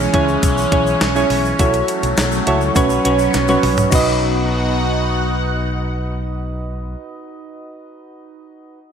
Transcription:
0.00 1.57 E3 medium
0.00 1.57 G#3 medium
0.00 0.13 C#4 medium
0.00 2.73 C#4 medium
0.00 0.14 E4 medium
0.00 0.14 G#4 medium
0.00 0.14 C#5 loud
0.13 0.35 C#2 medium
0.13 0.49 C#4 medium
0.13 0.49 E4 medium
0.13 0.49 G#4 medium
0.13 0.49 C#5 loud
0.13 kick loud
0.13 closed hi-hat medium
0.28 shaker soft
0.43 0.64 B1 loud
0.43 kick medium
0.43 closed hi-hat medium
0.43 shaker medium
0.58 shaker medium
0.72 0.93 B1 medium
0.72 0.98 C#4 medium
0.72 0.98 E4 medium
0.72 0.99 G#4 medium
0.72 0.99 C#5 loud
0.72 kick loud
0.72 closed hi-hat medium
0.87 shaker medium
1.01 1.22 B1 medium
1.01 snare loud
1.01 closed hi-hat medium
1.01 shaker medium
1.15 1.42 C#4 medium
1.15 1.42 E4 medium
1.15 1.42 G#4 medium
1.15 1.42 C#5 medium
1.15 shaker soft
1.30 1.51 B1 loud
1.30 open hi-hat medium
1.45 shaker medium
1.59 1.80 B1 loud
1.59 2.75 F#3 medium
1.59 2.75 A3 medium
1.59 2.12 E4 medium
1.59 2.12 F#4 medium
1.59 2.13 A4 medium
1.59 2.13 C#5 loud
1.59 kick loud
1.59 closed hi-hat medium
1.59 shaker medium
1.73 closed hi-hat soft
1.73 shaker medium
1.88 closed hi-hat medium
1.88 shaker medium
2.03 2.13 B1 loud
2.03 closed hi-hat medium
2.03 shaker soft
2.17 2.38 B1 loud
2.17 snare loud
2.17 closed hi-hat medium
2.17 shaker medium
2.32 shaker soft
2.47 2.68 C#2 medium
2.47 2.76 E4 medium
2.47 2.74 F#4 medium
2.47 2.76 A4 medium
2.47 2.75 C#5 medium
2.47 closed hi-hat medium
2.61 shaker soft
2.75 2.97 B1 loud
2.75 3.92 F#3 medium
2.75 3.91 B3 medium
2.75 2.99 C#4 medium
2.75 3.92 C#4 medium
2.75 2.99 F#4 medium
2.75 2.99 B4 medium
2.75 2.99 C#5 loud
2.75 kick medium
2.75 closed hi-hat medium
2.75 shaker medium
2.90 shaker medium
3.05 3.26 B1 medium
3.05 3.31 C#4 medium
3.05 3.31 F#4 medium
3.05 3.32 B4 medium
3.05 3.32 C#5 medium
3.05 closed hi-hat medium
3.19 shaker medium
3.33 3.55 B1 medium
3.33 snare medium
3.33 closed hi-hat medium
3.33 shaker medium
3.48 3.75 C#4 medium
3.48 3.75 F#4 medium
3.48 3.75 B4 medium
3.48 3.76 C#5 medium
3.48 high tom medium
3.48 shaker soft
3.63 3.84 B1 loud
3.63 mid tom medium
3.63 open hi-hat medium
3.77 floor tom medium
3.77 shaker medium
3.90 6.94 B1 medium
3.90 6.94 B2 medium
3.90 6.94 B3 medium
3.90 6.92 D#4 medium
3.90 6.95 D#4 medium
3.90 6.94 F#4 medium
3.90 6.95 F#4 medium
3.90 6.95 B4 medium
3.90 6.95 F#5 medium
3.90 kick loud
3.90 crash medium
3.90 shaker medium
3.95 6.97 D#5 medium

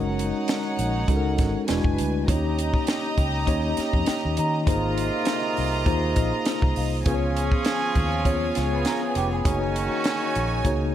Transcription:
0.00 0.31 F#1 loud
0.00 0.83 G#3 medium
0.00 0.83 C#4 medium
0.00 0.83 D#4 medium
0.00 1.66 D#4 medium
0.00 0.83 F#4 medium
0.00 0.83 A#4 loud
0.00 0.16 B4 medium
0.00 1.65 C#5 medium
0.00 1.65 F#5 loud
0.00 0.35 D#6 soft
0.19 closed hi-hat medium
0.48 snare loud
0.48 closed hi-hat medium
0.79 1.06 A#1 loud
0.79 closed hi-hat medium
1.08 1.36 C#2 loud
1.08 1.67 G#3 medium
1.08 1.69 C#4 medium
1.08 1.69 D#4 medium
1.08 1.68 F#4 medium
1.08 1.17 A4 medium
1.08 kick loud
1.08 closed hi-hat medium
1.16 1.72 A#4 loud
1.38 1.54 G#1 medium
1.38 kick loud
1.38 snare soft
1.38 closed hi-hat medium
1.68 1.84 E1 loud
1.68 2.17 G#3 medium
1.68 2.27 D4 medium
1.68 2.17 D4 loud
1.68 2.17 E4 medium
1.68 2.18 F#4 medium
1.68 2.27 B4 medium
1.68 2.18 B4 loud
1.68 2.27 G#5 medium
1.68 snare medium
1.68 closed hi-hat medium
1.84 1.97 F#1 medium
1.84 kick loud
1.98 2.26 D2 medium
1.98 closed hi-hat medium
2.28 2.70 D#2 loud
2.28 3.22 A#3 medium
2.28 3.22 C#4 medium
2.28 3.22 D#4 medium
2.28 2.36 F4 medium
2.28 4.63 G4 medium
2.28 3.22 C#5 loud
2.28 4.63 D#5 loud
2.28 4.63 A#5 loud
2.28 kick loud
2.28 closed hi-hat loud
2.35 3.25 G4 medium
2.59 closed hi-hat medium
2.74 kick loud
2.87 snare loud
2.87 closed hi-hat medium
3.18 3.45 C#2 loud
3.18 kick medium
3.18 closed hi-hat medium
3.47 3.75 D#2 medium
3.47 4.41 A#3 medium
3.47 4.41 C#4 medium
3.47 4.41 D#4 medium
3.47 4.41 G4 medium
3.47 4.42 C#5 loud
3.47 kick medium
3.47 closed hi-hat medium
3.77 4.05 A#5 medium
3.77 muted fingered electric bass stroke medium
3.77 snare soft
3.77 closed hi-hat medium
3.93 4.06 F2 medium
3.93 kick medium
4.06 4.35 G5 medium
4.06 muted fingered electric bass stroke soft
4.06 snare loud
4.06 closed hi-hat loud
4.25 4.37 D#2 medium
4.37 4.69 D#3 loud
4.37 4.65 D#5 medium
4.37 4.94 A#5 medium
4.37 closed hi-hat medium
4.66 5.09 G#1 loud
4.66 6.72 C3 medium
4.66 5.60 A#3 medium
4.66 6.72 A#3 medium
4.66 5.60 D#4 medium
4.66 5.61 F4 medium
4.66 6.72 F4 medium
4.66 7.02 F4 medium
4.66 5.61 G#4 medium
4.66 5.61 C5 loud
4.66 7.02 D#5 loud
4.66 7.02 A#5 loud
4.66 kick loud
4.66 closed hi-hat loud
4.98 closed hi-hat medium
5.25 snare loud
5.25 closed hi-hat medium
5.57 5.85 C2 medium
5.57 open hi-hat soft
5.86 6.13 D#2 loud
5.86 6.80 A#3 medium
5.86 6.80 D#4 medium
5.86 6.80 F4 medium
5.86 6.81 G#4 medium
5.86 6.81 C5 loud
5.86 kick loud
5.86 closed hi-hat medium
6.16 6.31 A#1 medium
6.16 kick loud
6.16 closed hi-hat medium
6.46 snare loud
6.46 closed hi-hat loud
6.62 6.75 C2 medium
6.62 kick loud
6.76 7.04 C2 loud
6.76 7.33 F5 medium
6.76 open hi-hat medium
7.06 7.48 C#2 loud
7.06 9.12 F3 medium
7.06 8.00 B3 medium
7.06 8.00 C#4 medium
7.06 9.12 C#4 medium
7.06 9.41 F4 medium
7.06 8.00 F4 medium
7.06 9.12 G#4 loud
7.06 8.00 G#4 medium
7.06 7.14 B4 medium
7.06 9.42 C#5 medium
7.06 9.41 G#5 loud
7.06 kick loud
7.06 closed hi-hat loud
7.14 8.04 C#5 loud
7.37 closed hi-hat medium
7.52 kick loud
7.65 snare loud
7.65 closed hi-hat medium
7.95 8.50 D#2 medium
7.95 kick medium
7.95 closed hi-hat medium
8.25 9.19 B3 medium
8.25 9.19 C#4 medium
8.25 9.19 F4 medium
8.25 9.20 G#4 medium
8.25 9.72 C#5 medium
8.25 9.20 C#5 loud
8.25 kick loud
8.25 closed hi-hat medium
8.55 8.84 C#2 medium
8.55 8.72 G#3 medium
8.55 8.71 F4 medium
8.55 snare soft
8.55 closed hi-hat medium
8.72 8.85 B3 medium
8.72 8.85 G#4 medium
8.85 9.02 C#4 medium
8.85 9.01 A#4 medium
8.85 snare medium
8.85 closed hi-hat medium
9.02 9.15 B3 medium
9.02 9.15 G#4 medium
9.15 9.43 F1 loud
9.15 9.31 B3 medium
9.15 9.31 G4 medium
9.15 closed hi-hat medium
9.32 9.61 B3 medium
9.32 9.60 G#4 medium
9.45 9.87 F#1 loud
9.45 10.92 D#3 medium
9.45 9.52 A3 medium
9.45 10.92 C#4 medium
9.45 10.39 D#4 medium
9.45 10.95 D#4 medium
9.45 10.39 F#4 medium
9.45 10.92 F#4 medium
9.45 10.40 G#4 medium
9.45 10.40 C#5 loud
9.45 10.95 C#5 medium
9.45 10.95 G#5 loud
9.45 kick loud
9.45 closed hi-hat loud
9.51 10.42 A#3 medium
9.76 closed hi-hat medium
10.04 snare loud
10.04 closed hi-hat medium
10.35 10.63 A#1 loud
10.35 closed hi-hat medium
10.65 10.92 C#2 loud
10.65 10.95 A#3 medium
10.65 10.95 D#4 medium
10.65 10.95 F#4 medium
10.65 10.95 G#4 medium
10.65 10.95 C#5 loud
10.65 kick medium
10.65 closed hi-hat medium

